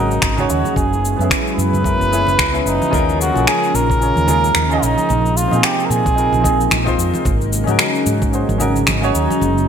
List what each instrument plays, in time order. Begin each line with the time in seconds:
Already playing: fretless electric bass G#1, analog synth pad C#3 F#3 G#3 A#3 D#4, grand piano C#4 D#4 F#4 A#4, muted trumpet D#4
0.11 cabasa
0.22 fretless electric bass G#1, finger snap, kick, cabasa
0.37 grand piano C#4 D#4 F#4 C#5, low conga, cabasa
0.50 fretless electric bass D#2, muted trumpet F#4, cabasa
0.64 high conga, low conga, cabasa
0.76 fretless electric bass F#1, analog synth pad F#3 B3 E4, muted trumpet G#4, kick, high bongo, cabasa
0.93 cabasa
1.05 cabasa
1.16 fretless electric bass F#2, grand piano B3 C#4
1.21 grand piano E4 G#4, cabasa
1.30 finger snap, kick, cabasa
1.47 cabasa
1.56 fretless electric bass F#2, muted trumpet B4, high conga, cabasa
1.73 low conga, cabasa
1.83 grand piano B3 C#4 E4 A#4, kick, cabasa
2.00 fretless electric bass F#1, high conga, cabasa
2.10 grand piano B3 C#4 E4 G#4, cabasa
2.27 high bongo, low conga, cabasa
2.39 fretless electric bass C#2, finger snap, kick, cabasa
2.52 grand piano B3 C#4 E4 B4, high bongo, cabasa
2.66 fretless electric bass F#1, muted trumpet D#4, cabasa
2.82 high conga, cabasa
2.91 fretless electric bass D#2, analog synth pad C#3 F3 G#3 A#3 D#4, grand piano C#4 F4 G#4 A#4, kick, high bongo, low conga, cabasa
3.09 cabasa
3.21 muted trumpet F#4, cabasa
3.32 fretless electric bass A#1, grand piano C#4 F4, high conga
3.37 grand piano G#4 A#4, cabasa
3.47 muted trumpet G#4, finger snap, cabasa
3.64 cabasa
3.74 fretless electric bass A#1, muted trumpet A#4, cabasa
3.90 kick, cabasa
4.00 grand piano C#4 F4 G#4 C#5, cabasa
4.16 fretless electric bass D#2, high conga, cabasa
4.27 grand piano C#4 F4 G#4 A#4, high bongo, low conga, cabasa
4.44 low conga, cabasa
4.54 fretless electric bass D#2, finger snap, high conga, cabasa
4.69 grand piano C#4 F4 G#4 D#5, cabasa
4.82 fretless electric bass A#1, muted trumpet D#4, cabasa
4.98 high conga, cabasa
5.09 fretless electric bass A#1, analog synth pad C3 G#3, high bongo, low conga, cabasa
5.26 cabasa
5.37 muted trumpet F4, cabasa
5.48 grand piano C4 D#4, high conga
5.52 fretless electric bass A#2, grand piano F4 G#4, cabasa
5.63 muted trumpet G4, finger snap, cabasa
5.80 cabasa
5.86 muted trumpet A#4, high conga
5.90 fretless electric bass A#2, muted trumpet G#4, cabasa
6.06 kick, cabasa
6.14 grand piano C4 D#4 F4 A#4, cabasa
6.32 fretless electric bass A#1, high conga, low conga, cabasa
6.41 grand piano C4 D#4 F4 G#4, kick, cabasa
6.61 cabasa
6.70 fretless electric bass A#1, finger snap, high conga, cabasa
6.84 grand piano C4 D#4 F4 C5, kick, high bongo, cabasa
6.98 fretless electric bass F2, cabasa
7.14 high conga, cabasa
7.25 fretless electric bass G#1, analog synth pad C#3 F#3, kick, high bongo, low conga, cabasa
7.41 cabasa
7.53 cabasa
7.64 fretless electric bass G#2, grand piano C#4 D#4, high conga
7.68 grand piano F#4 A#4, cabasa
7.79 finger snap, cabasa
7.95 cabasa
8.06 fretless electric bass G#2, high conga, cabasa
8.22 kick, cabasa
8.31 grand piano C#4 D#4 F#4 C5, cabasa
8.49 fretless electric bass G#1, high conga, cabasa
8.58 grand piano C#4 D#4 F#4 A#4, high bongo, low conga, cabasa
8.76 low conga, cabasa
8.87 fretless electric bass G#1, finger snap, high conga, cabasa
9.01 grand piano C#4 D#4 F#4 C#5, cabasa
9.14 fretless electric bass D#2, muted trumpet D#4, cabasa
9.30 high conga, cabasa
9.41 fretless electric bass F#1, analog synth pad B3 E4, high bongo, low conga, cabasa
9.58 cabasa